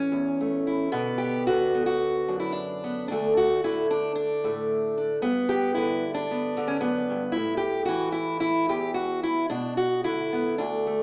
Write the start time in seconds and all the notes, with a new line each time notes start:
Already playing: A2 E3 C#4
0.12 E2
0.41 A3
0.67 E4
0.92 B2 D3 B3
1.18 G4
1.47 D3 F#4
1.74 B3
1.86 F#4
2.28 F#2 D4
2.40 E4
2.52 D4
2.84 B3
3.08 D2 D3 D4
3.12 A3
3.37 F#4
3.64 D3 E4
3.90 D4
4.15 D4
4.44 A2 A3
4.98 D4
5.22 G2 B3
5.49 G4
5.74 D3 E4
6.14 D4
6.31 B3
6.57 D3
6.68 C#4
6.81 F#2 B3
7.10 G2
7.32 E4
7.36 A2
7.57 G4
7.85 E3 F#4
8.12 E4
8.40 E4
8.69 E2 G4
8.94 F#4
9.23 E4
9.50 B2 D4
9.77 F#4
10.04 D3 E4
10.32 B3
10.58 D2 D4
10.87 A3